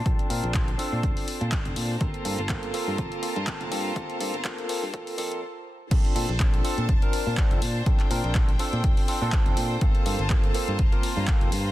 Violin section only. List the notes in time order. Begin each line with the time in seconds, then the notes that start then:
Already playing: D4 C5 A5
2.01 F4 A#4 A5
5.91 D4 C5 A5
7.86 G5
9.82 A#3 F4 A5